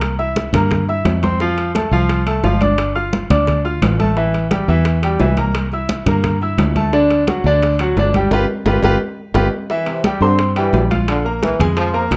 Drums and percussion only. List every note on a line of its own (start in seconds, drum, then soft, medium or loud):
0.01 high bongo medium
0.01 high timbale loud
0.19 high bongo soft
0.19 high conga soft
0.36 high bongo medium
0.36 high conga medium
0.36 high timbale medium
0.36 low timbale medium
0.54 high conga loud
0.54 low conga medium
0.54 high timbale loud
0.71 high bongo medium
0.71 high conga soft
0.71 low conga medium
0.71 high timbale medium
0.89 high bongo soft
0.89 high conga soft
1.05 high bongo soft
1.05 low bongo loud
1.05 high conga medium
1.05 high timbale loud
1.05 low timbale medium
1.23 high bongo soft
1.23 high conga medium
1.23 high timbale medium
1.40 high bongo medium
1.40 high conga soft
1.58 high bongo soft
1.58 high conga soft
1.58 high timbale medium
1.75 high bongo medium
1.75 high conga medium
1.75 high timbale loud
1.75 low timbale medium
1.93 high conga soft
2.09 high bongo medium
2.09 high conga soft
2.09 high timbale medium
2.27 high bongo soft
2.27 high conga soft
2.27 high timbale medium
2.44 high bongo soft
2.44 low bongo medium
2.44 high conga soft
2.44 low timbale loud
2.61 high bongo soft
2.61 high conga loud
2.61 high timbale medium
2.78 high bongo medium
2.78 high conga soft
2.78 high timbale loud
2.96 high bongo soft
2.96 high conga soft
3.13 high bongo medium
3.13 high conga medium
3.13 high timbale medium
3.13 low timbale medium
3.30 high conga loud
3.30 low conga medium
3.30 high timbale medium
3.47 high bongo medium
3.47 high conga soft
3.47 low conga medium
3.47 high timbale medium
3.65 high bongo soft
3.65 high conga soft
3.82 high bongo soft
3.82 low bongo medium
3.82 high conga medium
3.82 high timbale loud
3.82 low timbale medium
4.00 high bongo soft
4.00 high conga medium
4.00 high timbale medium
4.17 high bongo medium
4.17 high conga soft
4.34 high bongo soft
4.34 high conga soft
4.34 high timbale medium
4.51 high bongo medium
4.51 high conga loud
4.51 high timbale medium
4.51 low timbale medium
4.69 high conga soft
4.85 high bongo medium
4.85 high conga soft
4.85 high timbale medium
5.03 high bongo soft
5.03 high conga soft
5.03 high timbale medium
5.20 high bongo soft
5.20 low bongo medium
5.20 high conga soft
5.20 low timbale loud
5.37 high bongo soft
5.37 high conga medium
5.37 high timbale medium
5.55 high bongo medium
5.55 high timbale loud
5.72 high bongo soft
5.72 high conga soft
5.89 high bongo medium
5.89 high conga loud
5.89 high timbale medium
5.89 low timbale medium
6.07 high conga medium
6.07 low conga medium
6.07 high timbale medium
6.24 high bongo medium
6.24 high conga soft
6.24 low conga medium
6.24 high timbale medium
6.41 high bongo soft
6.41 high conga soft
6.58 high bongo soft
6.58 low bongo medium
6.58 high conga medium
6.58 high timbale loud
6.58 low timbale medium
6.76 high bongo soft
6.76 high conga medium
6.76 high timbale medium
6.93 high bongo medium
7.10 high bongo soft
7.10 high conga soft
7.10 high timbale medium
7.27 high bongo medium
7.27 high conga loud
7.27 high timbale medium
7.27 low timbale medium
7.45 high conga soft
7.62 high bongo medium
7.62 high conga soft
7.62 high timbale medium
7.79 high bongo soft
7.79 high conga soft
7.79 high timbale loud
7.97 high bongo soft
7.97 low bongo medium
7.97 high conga soft
7.97 low timbale medium
8.14 high bongo soft
8.14 high conga loud
8.14 high timbale medium
8.31 high bongo medium
8.31 high conga loud
8.31 high timbale loud
8.66 high bongo loud
8.66 high conga loud
8.66 high timbale loud
8.82 high bongo medium
8.82 high conga loud
8.82 high timbale loud
9.34 high bongo loud
9.34 high conga medium
9.34 high timbale loud
9.70 high bongo medium
9.70 high conga soft
9.86 high bongo soft
9.86 high conga soft
9.86 high timbale medium
10.04 high bongo medium
10.04 high conga medium
10.04 high timbale medium
10.04 low timbale medium
10.22 high conga soft
10.39 high bongo medium
10.39 high conga soft
10.39 high timbale medium
10.56 high bongo soft
10.56 high conga soft
10.56 high timbale medium
10.74 high bongo soft
10.74 low bongo medium
10.74 high conga soft
10.74 low timbale medium
10.91 high bongo soft
10.91 high conga loud
10.91 high timbale medium
11.08 high bongo medium
11.08 high conga soft
11.08 high timbale loud
11.26 high bongo soft
11.26 high conga soft
11.43 high bongo medium
11.43 high conga medium
11.43 high timbale medium
11.43 low timbale medium
11.60 high conga medium
11.60 low conga medium
11.60 high timbale medium
11.77 high bongo medium
11.77 high conga soft
11.77 high timbale medium
11.94 high bongo soft
11.94 high conga soft
12.11 high bongo soft
12.11 low bongo medium
12.11 high conga medium
12.11 high timbale loud
12.11 low timbale loud